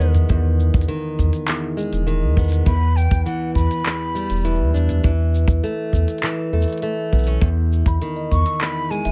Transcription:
Already playing: E2 D#3 G#3 E5
0.00 E2 B3, cabasa
0.15 mid tom, open hi-hat, cabasa
0.29 E2, kick, open hi-hat, cabasa
0.60 cabasa
0.74 E2, kick, cabasa
0.81 open hi-hat, cabasa
0.88 D#3, open hi-hat
1.19 E2, kick, cabasa
1.33 open hi-hat, cabasa
1.48 E2, clap, open hi-hat, cabasa
1.77 G#3, cabasa
1.92 E1, open hi-hat, cabasa
2.07 D#3, open hi-hat, cabasa
2.23 E2
2.37 E2 B3, kick, cabasa
2.43 cabasa
2.48 open hi-hat, cabasa
2.53 cabasa
2.66 E2 B5, kick, open hi-hat, cabasa
2.96 G5, cabasa
3.11 E2, kick, open hi-hat, cabasa
3.26 E3 F#5, open hi-hat, cabasa
3.55 E2 B5, kick, cabasa
3.71 open hi-hat, cabasa
3.85 E2, clap, open hi-hat, cabasa
4.15 G3, cabasa
4.30 E1, open hi-hat, cabasa
4.36 cabasa
4.41 E3, cabasa
4.45 open hi-hat, cabasa
4.51 cabasa
4.55 cabasa
4.60 E2
4.74 E2 D4, cabasa
4.89 mid tom, open hi-hat, cabasa
5.04 E2 E3, kick, open hi-hat, cabasa
5.35 cabasa
5.48 E2, kick, open hi-hat, cabasa
5.64 A3, open hi-hat, cabasa
5.93 E2, kick, cabasa
6.08 open hi-hat, cabasa
6.18 open hi-hat
6.23 E3, clap, open hi-hat, cabasa
6.28 open hi-hat
6.53 E2 A3
6.61 cabasa
6.68 open hi-hat, cabasa
6.73 open hi-hat
6.78 open hi-hat
6.82 A3, open hi-hat, cabasa
7.12 B1 B3, kick, cabasa
7.18 cabasa
7.23 open hi-hat, cabasa
7.27 C#4, cabasa
7.42 E2, kick, open hi-hat, cabasa
7.73 cabasa
7.86 E2 B5, kick, open hi-hat, cabasa
8.02 D#3, open hi-hat, cabasa
8.16 D#5
8.31 E2 C#6, kick, cabasa
8.46 E6, open hi-hat, cabasa
8.61 E2 B5, clap, open hi-hat, cabasa
8.90 G#3 G#5, cabasa
9.05 E1 E5, open hi-hat, cabasa

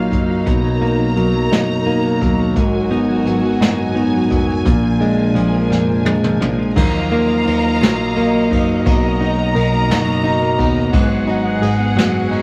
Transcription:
Already playing: D#3 F#3 A#3 D#4 F4 F5
0.11 F#1 F#3 A#3, kick, closed hi-hat
0.29 F#3
0.46 B1 B2 F#3 A#4 A#5, kick, closed hi-hat
0.64 F#3
0.81 A#3 D#4, closed hi-hat
0.99 F#3
1.16 B1 F#3 A#3, closed hi-hat
1.34 F#3
1.51 F#1 F#3 D#4, snare, closed hi-hat
1.69 F#3
1.86 A#3 D#4, closed hi-hat
2.04 F#3
2.21 D#2 F#3 A#3, kick, closed hi-hat
2.39 F#3
2.55 G#1 G#2 F#3 F#4 G#5, kick, closed hi-hat
2.74 F#3
2.91 B3 D#4, closed hi-hat
3.08 F#3
3.25 G#1 F#3 B3, closed hi-hat
3.43 F#3
3.61 F#1 F#3 D#4, snare, closed hi-hat
3.78 F#3
3.95 B3 D#4, closed hi-hat
4.13 F#3
4.31 F1 F#3 B3, kick, closed hi-hat
4.48 F#3
4.65 A#1 A#2 F3 D4 A#4, kick, closed hi-hat
4.83 F3
5.00 G#3 D4, closed hi-hat
5.18 F3
5.35 A#1 F3 G#3, closed hi-hat
5.53 F3
5.70 F1 F3 D4, snare
5.88 F3
6.05 G#3 D4, high tom
6.23 F3, mid tom
6.41 A#1 F3 G#3, mid tom
6.59 F3
6.76 D#2 D#3 F#3 F4 D#5 F5 A#5, kick, crash
6.94 A#3
7.11 A#3 F4, ride
7.29 A#3
7.46 D#2 D#4 F4, ride
7.64 A#3
7.81 A#1 F#3 F4, snare, ride
7.98 A#3
8.16 A#3 F4, ride
8.33 A#3
8.50 F#1 F#3 D#4, kick, ride
8.68 A#3
8.85 B1 B2 F#3 F#4 A#5, kick, ride
9.03 A#3
9.21 D#4 F#4, ride
9.38 A#3
9.55 B1 D#4 A#4, ride
9.73 A#3
9.89 F#1 F#3 F#4, snare, ride
10.07 A#3
10.24 D#4 F#4, ride
10.42 A#3
10.58 D#2 B3 D#4, kick, ride
10.76 A#3
10.93 G#1 G#2 B3 F#4 G#4 F#5, kick, ride
11.10 B3
11.27 D#4 F#4, ride
11.45 B3
11.62 G#1 D#4 G#4, ride
11.80 B3
11.96 F#1 F#3 B3 F#4, snare, ride
12.14 B3
12.31 D#4 F#4, ride

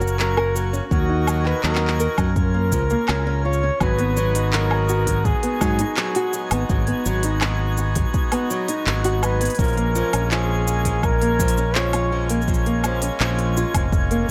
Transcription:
Already playing: F#1 A#3 C#4 F#4 A#4 G#6
0.01 F#4, shaker
0.07 shaker
0.19 F#3 A#4, clap, shaker
0.37 A#4, low woodblock
0.55 F#3, shaker
0.73 C#4, shaker
0.91 D#2 D#3 F#3 D#4 F#4 A#4, kick, shaker
1.09 D#4
1.27 F#3, low woodblock, shaker
1.45 F#4 B4, clap
1.63 D#2 F#3 A#4, clap, shaker
1.75 clap
1.88 clap
2.00 A#4, shaker
2.18 F#2 F#3, kick, low woodblock, shaker
2.36 C#4 F4 A#4, kick, shaker
2.54 A#3
2.72 C#2 F3, kick, shaker
2.90 A#3, shaker
3.08 C#2 C#4, clap, low woodblock, shaker
3.27 C#4
3.44 F4 C#5
3.53 shaker
3.63 C#4
3.80 G#1 F#3 G#3 B3 D#4 F#4 B4 G#6, kick, low woodblock, shaker
3.99 B3, open hi-hat
4.17 F#3, shaker
4.35 D#4, open hi-hat, shaker
4.53 F#3 A#4, clap, shaker
4.71 low woodblock
4.89 F#4, shaker
5.07 F#3, kick, open hi-hat, shaker
5.25 G#4, kick, shaker
5.43 B3, open hi-hat
5.61 G#2 F#3, kick, low woodblock, shaker
5.79 D#4, open hi-hat, shaker
5.97 F#3 G#4, clap, shaker
6.15 F#4, open hi-hat
6.33 F#3, shaker
6.51 G#1 B3, open hi-hat, low woodblock, shaker
6.70 G#1 F#3, kick, shaker
6.87 B3, open hi-hat
7.05 G#1 F#3, shaker
7.23 D#4, open hi-hat, shaker
7.41 F#3, clap, low woodblock, shaker
7.77 F#4, shaker
7.95 F#3, kick, open hi-hat, shaker
8.14 kick, shaker
8.32 B3, open hi-hat, low woodblock
8.50 F#3, shaker
8.68 D#4, open hi-hat, shaker
8.86 G#1 F#3, clap, shaker
9.04 F#4, open hi-hat
9.23 F#3 B4, low woodblock, shaker
9.41 B3, open hi-hat, shaker
9.45 open hi-hat
9.50 open hi-hat
9.55 open hi-hat
9.59 A#1 F3 A#3 C#4 A#4, kick, open hi-hat, shaker
9.64 open hi-hat
9.68 open hi-hat
9.73 open hi-hat
9.77 A#3, open hi-hat
9.95 F3, shaker
10.13 A#1 C#4, open hi-hat, low woodblock, shaker
10.31 F3 G#4, clap, shaker
10.68 F4, shaker
10.85 F3, kick, open hi-hat, shaker
11.03 A#4, kick, low woodblock, shaker
11.22 A#3, open hi-hat
11.40 F3, kick, shaker
11.48 open hi-hat
11.57 C#4, shaker
11.75 F3 C#5, clap, shaker
11.93 F4, open hi-hat, low woodblock
12.12 F3
12.29 A#3, open hi-hat, shaker
12.42 shaker
12.48 F3, kick, shaker
12.54 shaker
12.66 A#3, open hi-hat
12.84 F3, low woodblock, shaker
13.02 C#4, open hi-hat, shaker
13.20 A#1 F3, clap, shaker
13.39 open hi-hat
13.57 F4, shaker
13.74 F1 F3, kick, open hi-hat, low woodblock, shaker
13.92 kick, shaker
14.11 A#3, open hi-hat

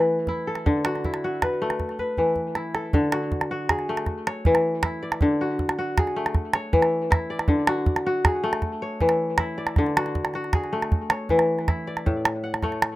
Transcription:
Already playing: E3 A3 E4 F#4 B4
0.27 E4, calabash thump
0.47 A4
0.55 calabash click
0.66 D3, calabash thump
0.85 F#4, calabash click
0.96 calabash click
1.04 E4, calabash thump
1.14 calabash click
1.24 F#4
1.42 B4, calabash thump, calabash click
1.62 A3
1.70 calabash click
1.80 calabash thump, calabash click
1.89 calabash click
1.99 B4, calabash thump
2.17 E3, calabash thump
2.36 calabash thump
2.55 E4, calabash click
2.75 A4, calabash click
2.93 D3, calabash thump
3.12 F#4, calabash click
3.32 calabash thump
3.41 calabash click
3.51 F#4
3.69 G#4, calabash thump, calabash click
3.79 calabash click
3.89 A3
3.97 calabash click
4.06 calabash thump, calabash click
4.27 C#5, calabash click
4.45 E3, calabash thump
4.55 calabash click
4.83 E4, calabash thump, calabash click
5.03 D5
5.12 calabash click
5.21 D3, calabash thump
5.41 F#4
5.59 calabash thump
5.69 calabash click
5.79 F#4
5.98 G#4, calabash thump, calabash click
6.07 calabash click
6.16 A3
6.26 calabash click
6.35 calabash thump, calabash click
6.53 C#5, calabash click
6.73 E3, calabash thump
6.82 calabash click
7.11 E4, calabash thump, calabash click
7.30 D5
7.39 calabash click
7.48 D3, calabash thump
7.67 F#4, calabash click
7.86 calabash thump
7.96 calabash click
8.06 F#4
8.25 G#4, calabash thump, calabash click
8.43 A3
8.53 calabash click
8.62 calabash thump, calabash click
8.82 C#5
9.01 E3, calabash thump
9.09 calabash click
9.38 E4, calabash thump, calabash click
9.58 D5
9.67 calabash click
9.76 D3, calabash thump, calabash click
9.86 calabash click
9.97 F#4, calabash click
10.06 calabash click
10.15 calabash thump
10.25 calabash click
10.34 F#4, calabash click
10.44 calabash click
10.53 G#4, calabash thump, calabash click
10.64 calabash click
10.73 A3
10.82 calabash click
10.92 calabash thump
11.10 C#5, calabash click
11.29 E3, calabash thump
11.39 calabash click
11.59 calabash click
11.68 E4, calabash thump, calabash click
11.87 D5
11.97 calabash click
12.06 A2, calabash thump
12.25 calabash click
12.44 F#5
12.54 calabash click
12.62 A3 C#5, calabash thump, calabash click
12.72 calabash click
12.82 calabash click

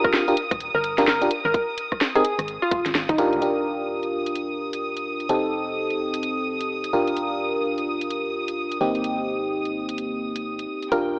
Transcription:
Already playing: D4 F4 G4 A#4 D#6
0.04 A#4, kick, cross-stick
0.14 snare
0.28 D4 F4 G4 A#4, closed hi-hat
0.37 closed hi-hat
0.51 D#1, kick, cross-stick, closed hi-hat
0.60 closed hi-hat
0.75 G1 A#4
0.84 closed hi-hat
0.98 D4 F4 G4 A#4, snare, closed hi-hat
1.07 A#4, snare
1.22 D4 F4 G4 A#4, closed hi-hat
1.31 closed hi-hat
1.45 G#1 A#4
1.54 kick, closed hi-hat
1.78 closed hi-hat
1.92 kick, cross-stick
2.01 snare
2.15 C4 D#4 G4 G#4 A#4, closed hi-hat
2.25 closed hi-hat
2.39 G#1, cross-stick, closed hi-hat
2.48 closed hi-hat
2.62 F4
2.71 D#1, kick, closed hi-hat
2.86 G#1, snare, closed hi-hat
2.95 G#1, snare
3.09 G#1 D#4, kick, closed hi-hat
3.18 D4 F4 G4 A#4, closed hi-hat
3.33 D#2, closed hi-hat
3.42 D#1 D4 F4 G4 A#4 D#6, closed hi-hat
4.03 closed hi-hat
4.26 closed hi-hat
4.35 closed hi-hat
4.73 closed hi-hat
4.97 closed hi-hat
5.20 closed hi-hat
5.29 F1 C4 D#4 G4 A4, closed hi-hat
5.90 closed hi-hat
6.14 closed hi-hat
6.23 closed hi-hat
6.61 closed hi-hat
6.84 closed hi-hat
6.93 D#1 D4 F4 G4 A#4
7.07 closed hi-hat
7.17 closed hi-hat
7.78 closed hi-hat
8.01 closed hi-hat
8.10 closed hi-hat
8.48 closed hi-hat
8.72 closed hi-hat
8.81 G#1 A#3 C4 D#4 G4
8.95 closed hi-hat
9.04 closed hi-hat
9.65 closed hi-hat
9.89 closed hi-hat
9.98 closed hi-hat
10.36 closed hi-hat
10.59 closed hi-hat
10.82 closed hi-hat
10.92 D#1 D4 F4 G4 A#4 G5, closed hi-hat

